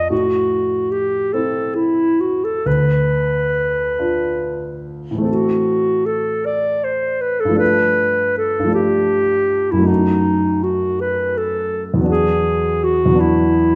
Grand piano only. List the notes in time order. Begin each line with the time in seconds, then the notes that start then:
Already playing: F2 C4 F4
0.10 A2
1.34 C4 E4
2.66 D2
3.99 D4 F4
5.11 A2 E3
5.18 A3 C4
5.25 A4
7.45 G2 F3
7.51 A3 D4
7.58 A4
8.59 G2
8.64 F3 A3
8.69 D4 A4
9.73 F#2
9.77 F#3 A3
9.83 D#4 F#4
11.94 E2 F#3
12.01 B3 D4
12.07 F#4
13.06 E2 F#3
13.12 B3 D4
13.19 F#4